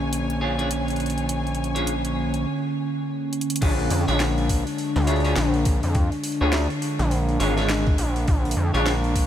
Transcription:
Already playing: A#1 D3 A#3 C#4 C#5 G#5
0.13 closed hi-hat
0.30 closed hi-hat
0.41 D4 F4 G#4 C#5
0.58 D4 F4 G#4 C#5, closed hi-hat
0.71 closed hi-hat
0.88 closed hi-hat
0.90 closed hi-hat
0.96 closed hi-hat
1.00 closed hi-hat
1.06 closed hi-hat
1.10 closed hi-hat
1.18 closed hi-hat
1.29 closed hi-hat
1.47 closed hi-hat
1.55 closed hi-hat
1.64 closed hi-hat
1.75 D4 F4 G#4 C#5, closed hi-hat
1.87 closed hi-hat
2.05 closed hi-hat
2.34 closed hi-hat
3.33 closed hi-hat
3.41 closed hi-hat
3.50 closed hi-hat
3.56 closed hi-hat
3.61 A#1 D3 G#3 D4 F4 G#4 C#5, kick, open hi-hat, crash
3.79 open hi-hat
3.90 F2, open hi-hat
4.08 A#1 D4 F4 G#4 C#5, open hi-hat
4.20 snare, open hi-hat
4.38 open hi-hat
4.49 kick, open hi-hat
4.67 open hi-hat
4.78 open hi-hat
4.96 D2, snare, open hi-hat
4.99 open hi-hat
5.02 open hi-hat
5.04 C#5, open hi-hat
5.07 D4 F4 G#4, open hi-hat
5.16 open hi-hat
5.20 open hi-hat
5.24 D4 F4 G#4 C#5, open hi-hat
5.36 A#1, snare, open hi-hat
5.54 open hi-hat
5.65 kick, open hi-hat
5.83 F2, open hi-hat
5.95 kick, open hi-hat
6.12 open hi-hat
6.24 open hi-hat
6.32 open hi-hat
6.41 D2 D4 F4 G#4 C#5
6.53 snare, open hi-hat
6.70 open hi-hat
6.82 open hi-hat
6.99 A#1, snare, open hi-hat
7.11 open hi-hat
7.29 open hi-hat
7.40 G#1 D4 F4 G#4 C#5, open hi-hat
7.57 D4 F4 G#4 C#5, snare, open hi-hat
7.69 snare, open hi-hat
7.87 kick, open hi-hat
7.98 A#1, open hi-hat
8.16 open hi-hat
8.28 A#1, kick, open hi-hat
8.45 open hi-hat
8.51 open hi-hat
8.57 F2
8.74 A#1 D4 F4 G#4 C#5, open hi-hat
8.86 snare, open hi-hat
9.04 open hi-hat
9.16 kick, open hi-hat

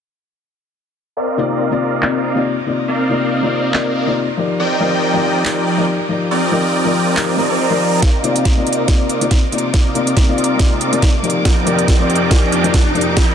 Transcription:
1.17 C4 A#4 D5 D#5 F5
1.37 C3 A#3 D#4 F4 D5
1.70 C3 A#3 D#4 F4 D5
2.01 C3 A#3 D#4 F4 D5, clap
2.24 C4 A#4 D5 D#5 F5
2.35 C3 A#3 D#4 F4 D5
2.66 C3 A#3 D#4 F4 D5
2.88 C4 A#4 D5 D#5 F5
3.09 C3 A#3 D#4 F4 D5
3.42 C3 A#3 D#4 F4 D5
3.73 C3 A#3 D#4 F4 D5, clap
3.95 C4 A#4 D5 D#5 F5
4.06 C3 A#3 D#4 F4 D5
4.37 F3 D#4 G4 A#4 D5
4.60 F3 C4 A#4 D5 D#5 G5
4.80 F3 D#4 G4 A#4 D5
5.13 F3 D#4 G4 A#4 D5
5.44 F3 D#4 G4 A#4 D5, clap
5.67 F3 C4 A#4 D5 D#5 G5
5.77 F3 D#4 G4 A#4 D5
6.09 F3 D#4 G4 A#4 D5
6.31 F3 C4 A#4 D5 D#5 G5
6.51 F3 D#4 G4 A#4 D5
6.85 F3 D#4 G4 A#4 D5
7.16 F3 D#4 G4 A#4 D5, clap, swell
7.37 F3 C4 D#4 G4 A#4 D5 D#5 A#5
7.50 F3 C4 A#4 D5 D#5 A#5
7.70 F3 D#4 G4 A#4 D5
8.02 C3 A#3 C4 D#4 F4 A#4 D5 D#5 F5 D6, kick, snare, closed hi-hat, riser
8.23 C3 A#3 D#4 F4 D5, closed hi-hat
8.36 closed hi-hat
8.45 kick, snare, closed hi-hat
8.56 C3 A#3 D#4 F4 D5
8.67 closed hi-hat
8.73 closed hi-hat
8.87 C3 A#3 D#4 F4 D5, kick, snare, closed hi-hat
9.09 C4 A#4 D5 D#5 F5, closed hi-hat
9.20 C3 A#3 D#4 F4 D5, closed hi-hat
9.31 kick, snare, closed hi-hat
9.51 C3 A#3 D#4 F4 D5, closed hi-hat
9.58 closed hi-hat
9.74 C4 A#4 D5 D#5 F5, kick, snare, closed hi-hat
9.94 C3 A#3 D#4 F4 D5, closed hi-hat
10.07 closed hi-hat
10.17 kick, snare, closed hi-hat
10.27 C3 A#3 D#4 F4 D5
10.38 closed hi-hat
10.44 closed hi-hat
10.59 C3 A#3 D#4 F4 D5, kick, snare, closed hi-hat
10.81 C4 A#4 D5 D#5 F5, closed hi-hat
10.92 C3 A#3 D#4 F4 D5, closed hi-hat
11.02 kick, snare, closed hi-hat
11.23 F3 D#4 G4 A#4 D5, closed hi-hat
11.30 closed hi-hat
11.45 F2 F3 C4 D#4 G4 A#4 D5 D#5 G5, kick, snare, closed hi-hat
11.66 F3 D#4 G4 A#4 D5, closed hi-hat
11.79 closed hi-hat
11.88 kick, snare, closed hi-hat
11.99 F3 D#4 G4 A#4 D5
12.10 closed hi-hat
12.16 closed hi-hat
12.30 F3 D#4 G4 A#4 D5, kick, snare, closed hi-hat
12.52 F3 C4 A#4 D5 D#5 G5, closed hi-hat
12.63 F3 D#4 G4 A#4 D5, closed hi-hat
12.74 kick, snare, closed hi-hat
12.94 F3 D#4 G4 A#4 D5, closed hi-hat
13.01 closed hi-hat
13.17 F3 C4 A#4 D5 D#5 G5, kick, snare, closed hi-hat

